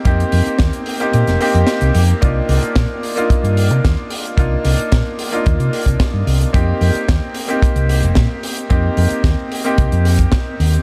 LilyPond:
<<
  \new Staff \with { instrumentName = "Grand piano" } { \time 4/4 \key f \dorian \tempo 4 = 111 <bes c' ees' g'>4.~ <bes c' ees' g'>16 <bes c' ees' g'>8. <bes c' ees' g'>4. | <bes d' ees' f'>4.~ <bes d' ees' f'>16 <bes d' ees' f'>2~ <bes d' ees' f'>16 | <bes d' ees' f'>4.~ <bes d' ees' f'>16 <bes d' ees' f'>2~ <bes d' ees' f'>16 | <bes c' ees' g'>4.~ <bes c' ees' g'>16 <bes c' ees' g'>2~ <bes c' ees' g'>16 |
<bes c' ees' g'>4.~ <bes c' ees' g'>16 <bes c' ees' g'>2~ <bes c' ees' g'>16 | }
  \new Staff \with { instrumentName = "Fingered electric bass" } { \clef bass \time 4/4 \key f \dorian f,16 r16 f,16 r16 ees,16 r8. bes,16 f,,16 r16 f,16 r16 c,16 f,16 r16 | c,16 r16 c,16 r16 bes,16 r4 g,8 c16 ees,16 r8. | c,16 r16 c,16 r16 bes,16 r8. ees,16 c16 r16 c,16 r16 g,16 c,16 r16 | f,16 r16 f,16 r16 ees,16 r4 c,8 f,,16 bes,16 r8. |
f,16 r16 f,16 r16 ees,16 r8. c,16 f,8 r8. ees,16 r16 | }
  \new DrumStaff \with { instrumentName = "Drums" } \drummode { \time 4/4 <hh bd>16 hh16 hho16 hh16 <hh bd sn>16 hh16 hho16 hh16 hh16 <hh sn>16 hho16 hh16 <hh sn>16 hh16 hho16 hh16 | <hh bd>8 hho16 hh16 <hh bd sn>8 hho16 hh16 <hh bd>16 hh16 hho16 hh16 <hh bd sn>8 hho16 hh16 | <hh bd>8 hho16 hh16 <hh bd sn>8 hho16 hh16 <hh bd>16 hh16 hho16 <hh bd>16 <hh bd sn>8 hho16 hh16 | <hh bd>8 hho16 hh16 <hh bd sn>8 hho16 hh16 <hh bd>16 hh16 hho16 hh16 <hh bd sn>8 hho16 hh16 |
<hh bd>8 hho16 hh16 <hh bd sn>8 hho16 hh16 <hh bd>16 hh16 hho16 <hh bd>16 <hh bd sn>8 hho16 hh16 | }
>>